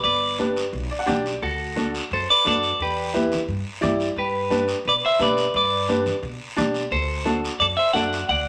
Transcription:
0.04 G1 B4 D5, high conga, long guiro
0.38 D4 G4 B4, high conga, short guiro
0.56 short guiro
0.73 B1, high conga, long guiro
0.91 D5
0.99 F#5
1.06 B1 D4 G4 D5 G5, high conga, low conga, short guiro
1.26 short guiro
1.42 D2 F#4 A4, high conga, long guiro
1.76 D4 F#4 A4, high conga, short guiro
1.94 short guiro
2.11 F#2 A4 C5, high conga, long guiro
2.30 B4 D5
2.45 F#2 D4 F#4 A4 D5, high conga, short guiro
2.63 short guiro
2.79 E2 G4 B4, high conga, long guiro
3.14 E4 G4 B4, high conga, short guiro
3.32 low conga, short guiro
3.48 G2, high conga, long guiro
3.81 G2 E4 G4 D5, high conga, low conga, short guiro
4.00 short guiro
4.16 G2 G4 B4, high conga, long guiro
4.50 D4 G4 B4, high conga, short guiro
4.68 short guiro
4.85 B2 B4 D5, high conga, long guiro
5.05 C5 E5
5.19 B2 D4 G4 B4 D5, high conga, short guiro
5.37 short guiro
5.54 G2 B4 D5, high conga, long guiro
5.88 D4 G4 B4, high conga, short guiro
6.06 low conga, short guiro
6.22 B2, high conga, long guiro
6.57 B2 D4 G4 D5, high conga, low conga, short guiro
6.74 short guiro
6.91 D2 A4 C5, high conga, long guiro
7.25 D4 F#4 A4, high conga, short guiro
7.44 short guiro
7.60 F#2 A4 D5, high conga, long guiro
7.77 C5 E5
7.93 F#2 D4 F#4 A4 D5 F#5, high conga, short guiro
8.13 short guiro
8.29 D2 D5 F#5, high conga, long guiro

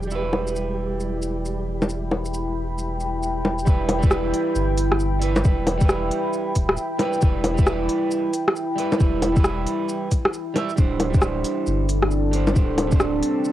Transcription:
Already playing: E1 G3 E4 G4 B4 E5 G5 B5
0.03 shaker
0.07 G3, shaker
0.11 E4 B4
0.33 low bongo
0.47 shaker
0.56 shaker
1.00 shaker
1.22 shaker
1.45 shaker
1.82 low bongo, shaker
1.89 shaker
2.11 low bongo
2.25 shaker
2.34 shaker
2.78 shaker
3.00 shaker
3.23 shaker
3.45 low bongo
3.59 shaker
3.65 E1 G3 E4, kick, shaker
3.69 B4
3.89 open hi-hat, low bongo
3.98 G3 E4
4.03 B4, kick, shaker
4.11 cross-stick, shaker
4.33 open hi-hat
4.55 G1, shaker
4.77 open hi-hat, shaker
4.92 cross-stick
5.00 shaker
5.19 G3 E4 B4, open hi-hat
5.36 low bongo, shaker
5.43 E1 G3 E4, kick, shaker
5.47 B4
5.67 open hi-hat, low bongo
5.78 G3 E4, kick, shaker
5.85 B4, cross-stick, shaker
6.11 open hi-hat
6.33 shaker
6.55 D1, kick, open hi-hat, shaker
6.69 cross-stick
6.77 shaker
6.99 G3 E4 B4, open hi-hat, low bongo
7.13 shaker
7.21 E1 G3 E4, kick, shaker
7.25 B4
7.44 open hi-hat, low bongo
7.54 G3, shaker
7.58 E4, kick
7.62 B4
7.67 cross-stick, shaker
7.89 open hi-hat
8.11 shaker
8.33 open hi-hat, shaker
8.48 cross-stick
8.56 shaker
8.76 G3 E4 B4, open hi-hat
8.92 low bongo, shaker
8.98 E1 G3 E4 B4, kick, shaker
9.22 open hi-hat, low bongo
9.32 G3 E4, shaker
9.37 B4, kick
9.44 cross-stick, shaker
9.66 open hi-hat
9.89 shaker
10.11 kick, open hi-hat, shaker
10.25 cross-stick
10.33 shaker
10.54 G3 E4 E5, open hi-hat, low bongo
10.69 shaker
10.76 D1 G3 D4 C5, kick, shaker
11.00 A4, open hi-hat, low bongo
11.10 G3
11.14 D4 C5, kick, shaker
11.22 cross-stick, shaker
11.44 open hi-hat
11.67 G1, shaker
11.89 C4, open hi-hat, shaker
12.02 cross-stick
12.11 shaker
12.31 G3 D4 C5, open hi-hat
12.47 low bongo, shaker
12.53 D1 G3 D4 C5, kick, shaker
12.78 open hi-hat, low bongo
12.87 G3 D4
12.92 C5, kick, shaker
13.00 cross-stick, shaker
13.23 open hi-hat
13.45 shaker

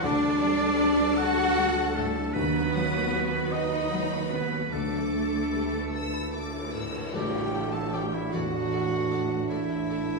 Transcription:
0.03 D2 D3 G3 D4 A4 D5 A5
0.23 G3
0.42 G3 D4
0.61 A4
0.80 D4
1.00 D5
1.17 F#4 A4 F#5 A5
1.58 G3
1.78 D5
1.95 A2 A3 G4 A4
2.16 D4
2.33 D#2 D#3 F#3 B3 F#4 B4 B5
2.55 D#4
2.74 F#3 D#6
2.93 F#4
3.12 F#4 B4 B5
3.32 F#4
3.51 F#3 D#4 B4 D#5 F#5
3.71 B5
3.92 F#3 F#5
4.11 F#4
4.31 D#3 B3 B4
4.52 F#3
4.71 D2 D3 A3 A4 D6
4.92 D4
5.12 A3
5.32 G3
5.52 G4 B4
5.72 A4
5.92 B4 A5 E6
6.14 B5
6.35 A3 D6
6.54 A4
6.74 A2 B4 E6
6.94 A2 A3
7.01 A3
7.05 E4
7.10 A1 A3 D4 D5 G5, tam-tam
7.14 A1 A2 A3 G4 A4
7.54 A3 A4 D5
7.72 A4 A5
7.93 A3 G4 A4 D5 G5
8.13 E4 E5
8.32 A1 E2 A2 A3 F#4 A4 D5 F#5
8.72 A3 A4 D5
9.11 A3 A4 D5
9.49 A1 A2 A3 E4 A4 D5 E5
9.90 A3 A4 D5

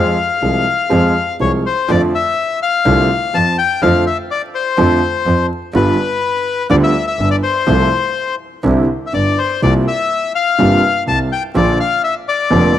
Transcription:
Already playing: F2 F3 G#3 C4 G#4 F5
0.42 C2 C3 F3 G#3 C4 G#4
0.89 F2 F3 G#3 C4 G#4
1.40 C2 C3 F3 G#3 C4 G#4 C#5
1.66 C5
1.88 F2 D3 F3 A3 C4 F4 D5
2.15 E5
2.62 F5
2.85 C2 C3 D3 A3 C4 F4
3.33 F2 F3 A5
3.58 G5
3.82 F2 D3 F3 A3 C4 F4 F5
4.07 E5
4.31 D5
4.55 C5
4.77 F2 D3 F3 A3 C4 F4
5.26 F2 F3
5.74 G1 G2 D3 G3 B3 F4 B4
6.70 D2 D3 G3 B3 F4 D5
6.83 E5
7.07 E5
7.19 G1 G2
7.31 D5
7.43 C5
7.67 C2 C3 F3 A3 F4
8.63 C2 C3 D3 G3 C4 E4
9.06 E5
9.13 G1 G2 D5
9.38 C5
9.62 C2 C3 G3 A#3 F4 D5
9.88 E5
10.35 F5
10.58 G1 G2 C3 G3 A#3 F4
11.06 C2 C3 A5
11.32 G5
11.55 A#1 A#2 D3 F3 A#3 F4 D5
11.80 F5
12.04 E5
12.28 D5
12.50 F1 F2 D3 F3 A#3 F4

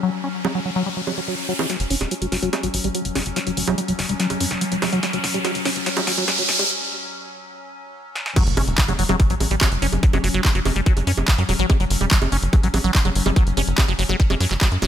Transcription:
Already playing: F#3 C#4, riser
0.03 F#3
0.24 C#4
0.45 F#3, high bongo
0.55 F#3
0.65 F#3
0.76 F#3
0.86 G3
0.97 F#3
1.07 F#3, high bongo
1.18 F#3
1.28 F#3
1.49 F#3
1.59 E3, high bongo
1.70 F#3 C#4, snare, closed hi-hat, riser
1.80 F#1, closed hi-hat
1.90 F#1 C#4, open hi-hat
2.01 E1, snare, closed hi-hat, high bongo
2.11 F#3, closed hi-hat
2.22 F#1 F#3, closed hi-hat
2.32 F#1 F#3, snare, open hi-hat
2.43 F#1 F#3, closed hi-hat
2.53 G3, snare, closed hi-hat, high bongo
2.63 A1 F#3, closed hi-hat
2.74 A1, open hi-hat
2.84 A1 G3, closed hi-hat
2.95 F#3, closed hi-hat
3.05 F#1, closed hi-hat
3.15 F#1 C#4, snare, open hi-hat, high bongo
3.26 F#1, closed hi-hat
3.36 F#3, snare, closed hi-hat
3.47 F#1 F#3, closed hi-hat
3.57 F#1 F#3, open hi-hat
3.68 F#1 F#3, closed hi-hat, high bongo
3.78 G3, closed hi-hat
3.88 F#1 F#3, closed hi-hat
3.99 F#1, snare, open hi-hat
4.09 F#1 G3, closed hi-hat
4.20 F#3, snare, closed hi-hat
4.30 F#1, closed hi-hat, high bongo
4.40 F#2 C#4, open hi-hat
4.51 F#1, snare, closed hi-hat
4.61 F#3, closed hi-hat
4.72 F#1 F#3, closed hi-hat
4.82 F#1 F#3, snare, open hi-hat, high bongo
4.93 F#1 F#3, closed hi-hat
5.03 G3, snare, closed hi-hat
5.13 F#1 F#3, closed hi-hat
5.24 F#1, snare, open hi-hat
5.34 E1 G3, closed hi-hat
5.45 F#3, snare, closed hi-hat, high bongo
5.55 F#1, closed hi-hat
5.65 F#1 C#4, snare, open hi-hat
5.76 F#1, closed hi-hat
5.86 F#3, snare, closed hi-hat
5.97 A1 F#3, closed hi-hat, high bongo
6.07 A1 F#3, snare, open hi-hat
6.18 A1 F#3, closed hi-hat
6.28 G3, snare, closed hi-hat
6.38 F#1 F#3, closed hi-hat
6.49 F#1, snare, open hi-hat
6.59 F#1 G3, closed hi-hat, high bongo
8.15 snare
8.26 snare
8.36 F#3 C#4, kick, closed hi-hat, crash, impact, high bongo
8.47 F#1, closed hi-hat
8.57 F#1 C#4, open hi-hat, high bongo
8.68 E1, closed hi-hat
8.78 F#3, kick, clap, closed hi-hat
8.88 F#1 F#3, closed hi-hat, high bongo
8.99 F#1 F#3, open hi-hat
9.09 F#1 F#3, closed hi-hat, high bongo
9.20 G3, kick, closed hi-hat
9.30 A1 F#3, closed hi-hat
9.40 A1, open hi-hat, high bongo
9.51 A1 G3, closed hi-hat
9.61 F#3, kick, clap, closed hi-hat, high bongo
9.72 F#1, closed hi-hat
9.82 F#1 C#4, open hi-hat
9.92 F#1, closed hi-hat, high bongo
10.03 F#3, kick, closed hi-hat
10.13 F#1 F#3, closed hi-hat, high bongo
10.24 F#1 F#3, open hi-hat
10.34 F#1 F#3, closed hi-hat
10.45 kick, clap, closed hi-hat, high bongo
10.55 F#1 F#3, closed hi-hat
10.65 F#1, open hi-hat, high bongo
10.76 F#1 G3, closed hi-hat
10.86 F#3, kick, closed hi-hat
10.97 F#1, closed hi-hat, high bongo
11.07 F#2 C#4, open hi-hat
11.17 F#1, high bongo
11.28 F#3, kick, clap, closed hi-hat
11.38 F#2 F#3, closed hi-hat
11.49 E1 F#3, open hi-hat, high bongo
11.59 A1 F#3, closed hi-hat
11.70 G3, kick, closed hi-hat, high bongo
11.80 F#1 F#3, closed hi-hat
11.90 F#1, open hi-hat
12.01 E1 G3, closed hi-hat, high bongo
12.11 F#3, kick, clap, closed hi-hat
12.22 F#1, closed hi-hat, high bongo
12.32 F#1 C#4, open hi-hat
12.43 F#1, closed hi-hat
12.53 F#3, kick, closed hi-hat, high bongo
12.63 A1 F#3, closed hi-hat
12.74 A1 F#3, open hi-hat, high bongo
12.84 A1 F#3, closed hi-hat
12.95 G3, kick, clap, closed hi-hat
13.05 F#1 F#3, closed hi-hat, high bongo
13.15 F#1, open hi-hat
13.26 F#1 G3, closed hi-hat, high bongo
13.36 F#3, kick, closed hi-hat
13.47 F#1, closed hi-hat
13.57 F#1 C#4, open hi-hat, high bongo
13.68 F#1, closed hi-hat
13.78 F#3, kick, clap, closed hi-hat, high bongo
13.88 F#1 F#3, closed hi-hat
13.99 F#1 F#3, open hi-hat
14.09 F#1 F#3, closed hi-hat, high bongo
14.20 G3, kick, closed hi-hat
14.30 F#1 F#3, closed hi-hat, high bongo
14.40 F#2 F#3, open hi-hat
14.51 F#1 F#3, clap, closed hi-hat
14.61 F#3, kick, clap, closed hi-hat, high bongo
14.72 F#2, closed hi-hat
14.82 E1 F#3, open hi-hat, high bongo

